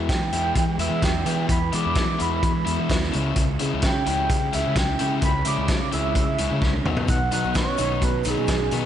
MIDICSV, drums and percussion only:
0, 0, Header, 1, 2, 480
1, 0, Start_track
1, 0, Key_signature, 4, "major"
1, 0, Tempo, 466200
1, 1542, Time_signature, 4, 2, 24, 8
1, 9118, End_track
2, 0, Start_track
2, 0, Title_t, "Drums"
2, 94, Note_on_c, 9, 36, 107
2, 95, Note_on_c, 9, 42, 92
2, 108, Note_on_c, 9, 38, 99
2, 197, Note_off_c, 9, 36, 0
2, 198, Note_off_c, 9, 42, 0
2, 211, Note_off_c, 9, 38, 0
2, 334, Note_on_c, 9, 42, 70
2, 437, Note_off_c, 9, 42, 0
2, 571, Note_on_c, 9, 42, 92
2, 572, Note_on_c, 9, 36, 107
2, 674, Note_off_c, 9, 36, 0
2, 674, Note_off_c, 9, 42, 0
2, 812, Note_on_c, 9, 42, 73
2, 915, Note_off_c, 9, 42, 0
2, 1053, Note_on_c, 9, 42, 94
2, 1054, Note_on_c, 9, 36, 108
2, 1065, Note_on_c, 9, 38, 105
2, 1156, Note_off_c, 9, 42, 0
2, 1157, Note_off_c, 9, 36, 0
2, 1168, Note_off_c, 9, 38, 0
2, 1294, Note_on_c, 9, 42, 74
2, 1397, Note_off_c, 9, 42, 0
2, 1533, Note_on_c, 9, 42, 95
2, 1535, Note_on_c, 9, 36, 109
2, 1636, Note_off_c, 9, 42, 0
2, 1637, Note_off_c, 9, 36, 0
2, 1775, Note_on_c, 9, 42, 66
2, 1878, Note_off_c, 9, 42, 0
2, 2009, Note_on_c, 9, 42, 88
2, 2015, Note_on_c, 9, 36, 112
2, 2022, Note_on_c, 9, 38, 103
2, 2112, Note_off_c, 9, 42, 0
2, 2118, Note_off_c, 9, 36, 0
2, 2125, Note_off_c, 9, 38, 0
2, 2259, Note_on_c, 9, 42, 65
2, 2362, Note_off_c, 9, 42, 0
2, 2499, Note_on_c, 9, 42, 85
2, 2500, Note_on_c, 9, 36, 111
2, 2602, Note_off_c, 9, 42, 0
2, 2603, Note_off_c, 9, 36, 0
2, 2743, Note_on_c, 9, 42, 67
2, 2846, Note_off_c, 9, 42, 0
2, 2981, Note_on_c, 9, 36, 105
2, 2984, Note_on_c, 9, 42, 90
2, 2996, Note_on_c, 9, 38, 108
2, 3084, Note_off_c, 9, 36, 0
2, 3087, Note_off_c, 9, 42, 0
2, 3099, Note_off_c, 9, 38, 0
2, 3115, Note_on_c, 9, 38, 32
2, 3218, Note_off_c, 9, 38, 0
2, 3224, Note_on_c, 9, 42, 70
2, 3327, Note_off_c, 9, 42, 0
2, 3456, Note_on_c, 9, 42, 91
2, 3462, Note_on_c, 9, 36, 106
2, 3559, Note_off_c, 9, 42, 0
2, 3565, Note_off_c, 9, 36, 0
2, 3698, Note_on_c, 9, 42, 72
2, 3801, Note_off_c, 9, 42, 0
2, 3931, Note_on_c, 9, 42, 89
2, 3941, Note_on_c, 9, 36, 101
2, 3943, Note_on_c, 9, 38, 102
2, 4034, Note_off_c, 9, 42, 0
2, 4044, Note_off_c, 9, 36, 0
2, 4046, Note_off_c, 9, 38, 0
2, 4183, Note_on_c, 9, 42, 73
2, 4286, Note_off_c, 9, 42, 0
2, 4423, Note_on_c, 9, 36, 106
2, 4424, Note_on_c, 9, 42, 98
2, 4526, Note_off_c, 9, 36, 0
2, 4527, Note_off_c, 9, 42, 0
2, 4663, Note_on_c, 9, 42, 76
2, 4766, Note_off_c, 9, 42, 0
2, 4896, Note_on_c, 9, 42, 103
2, 4898, Note_on_c, 9, 36, 106
2, 4909, Note_on_c, 9, 38, 108
2, 4999, Note_off_c, 9, 42, 0
2, 5001, Note_off_c, 9, 36, 0
2, 5012, Note_off_c, 9, 38, 0
2, 5136, Note_on_c, 9, 42, 76
2, 5239, Note_off_c, 9, 42, 0
2, 5371, Note_on_c, 9, 42, 97
2, 5376, Note_on_c, 9, 36, 112
2, 5473, Note_off_c, 9, 42, 0
2, 5479, Note_off_c, 9, 36, 0
2, 5608, Note_on_c, 9, 42, 69
2, 5711, Note_off_c, 9, 42, 0
2, 5847, Note_on_c, 9, 42, 93
2, 5854, Note_on_c, 9, 36, 105
2, 5860, Note_on_c, 9, 38, 109
2, 5950, Note_off_c, 9, 42, 0
2, 5957, Note_off_c, 9, 36, 0
2, 5963, Note_off_c, 9, 38, 0
2, 6097, Note_on_c, 9, 42, 64
2, 6200, Note_off_c, 9, 42, 0
2, 6334, Note_on_c, 9, 36, 109
2, 6335, Note_on_c, 9, 42, 87
2, 6437, Note_off_c, 9, 36, 0
2, 6438, Note_off_c, 9, 42, 0
2, 6571, Note_on_c, 9, 42, 67
2, 6674, Note_off_c, 9, 42, 0
2, 6814, Note_on_c, 9, 36, 113
2, 6821, Note_on_c, 9, 38, 60
2, 6917, Note_off_c, 9, 36, 0
2, 6924, Note_off_c, 9, 38, 0
2, 6931, Note_on_c, 9, 48, 65
2, 7034, Note_off_c, 9, 48, 0
2, 7059, Note_on_c, 9, 45, 89
2, 7162, Note_off_c, 9, 45, 0
2, 7174, Note_on_c, 9, 43, 91
2, 7277, Note_off_c, 9, 43, 0
2, 7290, Note_on_c, 9, 42, 89
2, 7290, Note_on_c, 9, 82, 72
2, 7295, Note_on_c, 9, 36, 112
2, 7393, Note_off_c, 9, 42, 0
2, 7393, Note_off_c, 9, 82, 0
2, 7398, Note_off_c, 9, 36, 0
2, 7532, Note_on_c, 9, 42, 73
2, 7533, Note_on_c, 9, 82, 82
2, 7635, Note_off_c, 9, 42, 0
2, 7636, Note_off_c, 9, 82, 0
2, 7657, Note_on_c, 9, 82, 26
2, 7760, Note_off_c, 9, 82, 0
2, 7769, Note_on_c, 9, 82, 68
2, 7772, Note_on_c, 9, 42, 91
2, 7777, Note_on_c, 9, 36, 104
2, 7784, Note_on_c, 9, 38, 109
2, 7872, Note_off_c, 9, 82, 0
2, 7875, Note_off_c, 9, 42, 0
2, 7880, Note_off_c, 9, 36, 0
2, 7887, Note_off_c, 9, 38, 0
2, 8008, Note_on_c, 9, 82, 90
2, 8012, Note_on_c, 9, 42, 68
2, 8111, Note_off_c, 9, 82, 0
2, 8115, Note_off_c, 9, 42, 0
2, 8254, Note_on_c, 9, 82, 65
2, 8255, Note_on_c, 9, 36, 107
2, 8255, Note_on_c, 9, 42, 96
2, 8357, Note_off_c, 9, 82, 0
2, 8358, Note_off_c, 9, 36, 0
2, 8358, Note_off_c, 9, 42, 0
2, 8484, Note_on_c, 9, 82, 83
2, 8490, Note_on_c, 9, 42, 76
2, 8586, Note_off_c, 9, 82, 0
2, 8593, Note_off_c, 9, 42, 0
2, 8611, Note_on_c, 9, 82, 27
2, 8714, Note_off_c, 9, 82, 0
2, 8723, Note_on_c, 9, 82, 69
2, 8729, Note_on_c, 9, 42, 102
2, 8734, Note_on_c, 9, 36, 107
2, 8741, Note_on_c, 9, 38, 109
2, 8826, Note_off_c, 9, 82, 0
2, 8832, Note_off_c, 9, 42, 0
2, 8837, Note_off_c, 9, 36, 0
2, 8844, Note_off_c, 9, 38, 0
2, 8969, Note_on_c, 9, 42, 73
2, 8973, Note_on_c, 9, 82, 91
2, 9072, Note_off_c, 9, 42, 0
2, 9076, Note_off_c, 9, 82, 0
2, 9118, End_track
0, 0, End_of_file